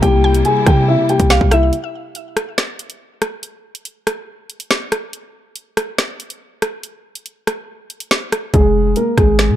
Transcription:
Already playing: string section A#3
0.01 808-style bass C2, tine electric piano C3 G3 A#3 E4, string section C3 G3 E4, grand piano G4 G5, kick, closed hi-hat
0.06 tine electric piano G4
0.24 synth pluck G5
0.35 closed hi-hat
0.45 grand piano G#4 G#5, closed hi-hat
0.66 808-style bass C3, grand piano G4 G5, kick, cross-stick, closed hi-hat
0.88 grand piano E4 E5
1.09 grand piano G4 G5, closed hi-hat
1.20 808-style bass C2, kick, closed hi-hat
1.30 synth pluck F5, finger snap, snare
1.41 808-style bass C2, kick
1.51 grand piano E4 E5, synth pluck E5, cross-stick, closed hi-hat
1.73 closed hi-hat
2.15 closed hi-hat
2.37 cross-stick, closed hi-hat
2.58 finger snap, snare, closed hi-hat
2.79 closed hi-hat
2.90 closed hi-hat
3.22 cross-stick, closed hi-hat
3.43 closed hi-hat
3.75 closed hi-hat
3.85 closed hi-hat
4.07 cross-stick, closed hi-hat
4.50 closed hi-hat
4.60 closed hi-hat
4.71 finger snap, snare
4.92 cross-stick, closed hi-hat
5.13 closed hi-hat
5.56 closed hi-hat
5.77 cross-stick, closed hi-hat
5.98 finger snap, snare, closed hi-hat
6.20 closed hi-hat
6.30 closed hi-hat
6.62 cross-stick, closed hi-hat
6.83 closed hi-hat
7.15 closed hi-hat
7.26 closed hi-hat
7.47 cross-stick, closed hi-hat
7.90 closed hi-hat
8.00 closed hi-hat
8.11 finger snap, snare
8.32 cross-stick, closed hi-hat
8.54 808-style bass F1, grand piano G#3 G#4, kick, closed hi-hat
8.96 grand piano A#3 A#4, closed hi-hat
9.18 808-style bass G#1, grand piano G#3 G#4, kick, cross-stick, closed hi-hat
9.39 finger snap, snare, closed hi-hat
9.49 808-style bass C3

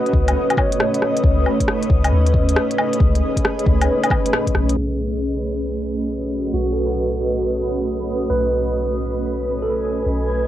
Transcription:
Already playing: ambient pad A3 C#4 F#4 B4 D#5, tine electric piano B4 D#5
0.06 closed hi-hat
0.13 808-style bass C#2, kick
0.28 closed hi-hat, low woodblock
0.50 closed hi-hat, low woodblock
0.57 tine electric piano C#5, kick, low woodblock
0.72 closed hi-hat
0.80 cross-stick
0.94 closed hi-hat
1.02 cross-stick
1.17 closed hi-hat
1.24 808-style bass C#2, kick
1.46 low woodblock
1.60 kick, closed hi-hat
1.68 cross-stick
1.82 closed hi-hat
1.90 808-style bass C#2, kick
2.04 ambient pad G#4, closed hi-hat, low woodblock
2.12 808-style bass D#2
2.26 closed hi-hat
2.34 kick
2.49 closed hi-hat
2.56 cross-stick
2.71 closed hi-hat
2.78 low woodblock
2.93 closed hi-hat
3.00 808-style bass C#2, kick
3.15 closed hi-hat
3.37 kick, closed hi-hat
3.45 cross-stick
3.59 closed hi-hat
3.66 808-style bass C#2, kick
3.81 closed hi-hat, low woodblock
4.04 closed hi-hat, low woodblock
4.10 kick, low woodblock
4.26 closed hi-hat
4.33 cross-stick
4.47 kick, closed hi-hat
4.55 808-style bass B1, cross-stick
4.69 closed hi-hat
4.77 808-style bass B1, tine electric piano G#4
4.91 ambient pad F#4
6.53 808-style bass B1, tine electric piano F#4
6.73 tine electric piano A4
6.86 tine electric piano B4
8.30 808-style bass B1, tine electric piano B4
8.64 ambient pad G#5
9.62 tine electric piano A4
10.06 808-style bass B1

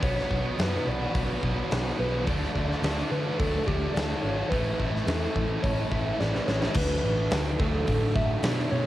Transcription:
0.01 fingered electric bass B1, overdriven electric guitar B2 F#3 B3 D4 F#4, soft synth lead C#5, kick, open hi-hat
0.15 overdriven electric guitar B3 D4 F#4, snare
0.29 fingered electric bass B1, overdriven electric guitar B2 F#3 B3 D4 F#4, kick
0.44 muted overdriven electric guitar stroke
0.57 fingered electric bass F#2, overdriven electric guitar B2 F#3 B3 D4 F#4, soft synth lead B4, snare, open hi-hat
0.71 overdriven electric guitar F#3 B3 D4 F#4
0.85 fingered electric bass B1, soft synth lead D5, muted overdriven electric guitar stroke
0.99 overdriven electric guitar F#3 B3 D4 F#4
1.15 fingered electric bass B1, kick, open hi-hat
1.41 fingered electric bass B1, overdriven electric guitar B2 F#3 B3 D4 F#4, kick
1.56 overdriven electric guitar F#3 B3 D4
1.70 fingered electric bass B1, overdriven electric guitar B2 F#3 B3 D4 F#4, snare, open hi-hat
1.84 overdriven electric guitar F#3 B3 D4 F#4
1.97 fingered electric bass B1, overdriven electric guitar B2 F#3 B3 D4 F#4, soft synth lead B4
2.13 overdriven electric guitar F#3 B3 D4 F#4
2.26 fingered electric bass D2, overdriven electric guitar D3 F#3 A3 D4 F#4, soft synth lead D5, kick, open hi-hat
2.40 overdriven electric guitar A3 D4 F#4, snare
2.54 fingered electric bass D2, overdriven electric guitar D3 F#3 A3 D4 F#4, kick
2.69 muted overdriven electric guitar stroke, snare
2.81 fingered electric bass D2, overdriven electric guitar D3 F#3 A3 D4 F#4, snare, open hi-hat
2.96 overdriven electric guitar F#3 A3 D4 F#4
3.10 fingered electric bass D3, soft synth lead B4, muted overdriven electric guitar stroke
3.24 overdriven electric guitar F#3 A3 D4 F#4
3.39 fingered electric bass D2, soft synth lead A4, kick, open hi-hat
3.66 fingered electric bass D2, overdriven electric guitar D3 F#3 A3 D4 F#4, soft synth lead G4, kick
3.81 overdriven electric guitar F#3 A3 D4
3.94 fingered electric bass D2, overdriven electric guitar D3 F#3 A3 D4 F#4, soft synth lead D5, snare, open hi-hat
4.09 overdriven electric guitar F#3 A3 D4 F#4
4.21 fingered electric bass G#1, overdriven electric guitar D3 F#3 A3 D4 F#4, soft synth lead C#5
4.36 overdriven electric guitar F#3 A3 D4 F#4
4.50 fingered electric bass A1, overdriven electric guitar A2 E3 A3 C#4 E4, soft synth lead B4, kick, open hi-hat
4.63 overdriven electric guitar A3 C#4 E4
4.78 fingered electric bass A1, overdriven electric guitar E3 A3 C#4 E4, kick
4.92 muted overdriven electric guitar stroke, snare
5.06 fingered electric bass E2, overdriven electric guitar A2 E3 A3 C#4 E4, soft synth lead A4, snare, open hi-hat
5.20 overdriven electric guitar A3 C#4 E4
5.34 fingered electric bass A1, muted overdriven electric guitar stroke, kick
5.48 overdriven electric guitar A3 C#4 E4
5.63 fingered electric bass A1, soft synth lead C#5, kick, open hi-hat
5.89 fingered electric bass A1, overdriven electric guitar E3 A3 C#4 E4, soft synth lead E5, kick
6.04 overdriven electric guitar A3 C#4 E4
6.18 fingered electric bass A1, overdriven electric guitar A2 E3 A3 C#4 E4, soft synth lead D5, snare
6.31 overdriven electric guitar A3 C#4 E4, snare
6.46 fingered electric bass A1, overdriven electric guitar E3 A3 C#4 E4, soft synth lead C#5, snare
6.60 overdriven electric guitar A3 C#4 E4, snare
6.73 fingered electric bass D2, overdriven electric guitar D3 F#3 A3 D4 F#4, soft synth lead B4, kick, crash
7.01 fingered electric bass A1, overdriven electric guitar A3 D4 F#4
7.06 overdriven electric guitar F#3
7.30 fingered electric bass D2, overdriven electric guitar D3 F#3 A3 D4 F#4, snare, open hi-hat
7.59 fingered electric bass D2, overdriven electric guitar F#3 A3 D4 F#4, soft synth lead A4, kick
7.86 fingered electric bass A2, overdriven electric guitar D3 A3 D4 F#4, kick, open hi-hat
8.15 overdriven electric guitar A3 D4 F#4, soft synth lead E5, kick
8.42 fingered electric bass B2, overdriven electric guitar D3 F#3 A3 D4 F#4, soft synth lead D5, snare, open hi-hat
8.71 fingered electric bass B2, overdriven electric guitar F#3 A3 D4 F#4, soft synth lead C#5

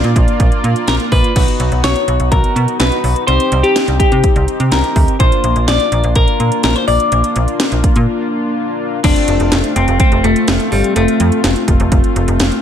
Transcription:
Already playing: analog polysynth A#3 F4 D5, clean electric guitar D4
0.04 fm bass A#2, closed hi-hat
0.16 fm bass A#1, kick, closed hi-hat
0.28 closed hi-hat
0.40 fm bass A#1, kick, closed hi-hat
0.52 closed hi-hat
0.64 fm bass A#2, closed hi-hat
0.76 closed hi-hat
0.88 fm bass A#1, clean electric guitar A#4, snare, closed hi-hat
1.00 closed hi-hat
1.12 fm bass A#1, clean electric guitar B4, kick, open hi-hat
1.24 closed hi-hat
1.36 fm bass B1, analog polysynth B3 D#4 F#4, kick, closed hi-hat, crash
1.48 closed hi-hat
1.60 fm bass B1, closed hi-hat
1.72 fm bass B1, closed hi-hat
1.84 fm bass B1, clean electric guitar C#5, snare, closed hi-hat
1.96 closed hi-hat
2.08 fm bass B1, closed hi-hat
2.20 fm bass B1, closed hi-hat
2.32 fm bass B1, clean electric guitar A#4, kick, closed hi-hat
2.44 closed hi-hat
2.56 fm bass B2, closed hi-hat
2.68 closed hi-hat
2.80 fm bass B1, clean electric guitar B4, snare, closed hi-hat
2.92 closed hi-hat
3.04 fm bass B1, open hi-hat
3.16 closed hi-hat
3.27 fm bass C2, analog polysynth C4 D#4 G4, clean electric guitar C5, closed hi-hat
3.40 closed hi-hat
3.52 fm bass C2, closed hi-hat
3.63 clean electric guitar G4, closed hi-hat
3.76 snare, closed hi-hat
3.88 fm bass C2, closed hi-hat
4.00 clean electric guitar G4, kick, closed hi-hat
4.12 fm bass C3, closed hi-hat
4.24 kick, closed hi-hat
4.36 fm bass C2, closed hi-hat
4.48 closed hi-hat
4.60 fm bass C3, closed hi-hat
4.72 fm bass C2, clean electric guitar A#4, snare, closed hi-hat
4.84 closed hi-hat
4.96 fm bass D2, kick, open hi-hat
5.08 closed hi-hat
5.20 fm bass A#1, analog polysynth A#3 D4 F4, clean electric guitar C5, kick, closed hi-hat
5.32 closed hi-hat
5.44 fm bass A#1, closed hi-hat
5.56 fm bass A#1, closed hi-hat
5.68 fm bass A#1, clean electric guitar D5, snare, closed hi-hat
5.80 closed hi-hat
5.92 fm bass A#1, closed hi-hat
6.04 fm bass A#1, closed hi-hat
6.15 fm bass A#1, clean electric guitar A#4, kick, closed hi-hat
6.28 closed hi-hat
6.40 fm bass A#2, closed hi-hat
6.52 closed hi-hat
6.63 fm bass A#1, clean electric guitar A#4, snare, closed hi-hat
6.76 clean electric guitar C5, closed hi-hat
6.88 fm bass A#1, clean electric guitar D5, open hi-hat
7.00 closed hi-hat
7.12 fm bass A#1, closed hi-hat
7.24 closed hi-hat
7.36 fm bass A#1, closed hi-hat
7.48 closed hi-hat
7.60 snare, closed hi-hat
7.72 fm bass A#1, closed hi-hat
7.84 kick, closed hi-hat
7.96 fm bass A#2, closed hi-hat
9.04 fm bass F1, analog polysynth A3 C4 F4, clean electric guitar D4, kick, closed hi-hat, crash
9.16 closed hi-hat
9.28 fm bass F1, closed hi-hat
9.40 fm bass F1, closed hi-hat
9.52 fm bass F1, snare, closed hi-hat
9.64 closed hi-hat
9.76 fm bass F1, clean electric guitar C4, closed hi-hat
9.88 fm bass F1, closed hi-hat
10.00 clean electric guitar C4, kick, closed hi-hat
10.12 fm bass F1, closed hi-hat
10.24 fm bass F1, clean electric guitar A3, closed hi-hat
10.36 closed hi-hat
10.48 fm bass F1, snare, closed hi-hat
10.60 closed hi-hat
10.72 fm bass G1, clean electric guitar G3, open hi-hat
10.84 closed hi-hat
10.96 fm bass F1, clean electric guitar A3, closed hi-hat
11.08 closed hi-hat
11.20 fm bass F2, closed hi-hat
11.32 closed hi-hat
11.44 fm bass F1, snare, closed hi-hat
11.56 closed hi-hat
11.68 fm bass F1, kick, closed hi-hat
11.80 fm bass F1, closed hi-hat
11.92 fm bass F1, kick, closed hi-hat
12.04 closed hi-hat
12.16 fm bass F1, closed hi-hat
12.28 fm bass F1, closed hi-hat
12.40 fm bass F1, snare, closed hi-hat
12.52 closed hi-hat

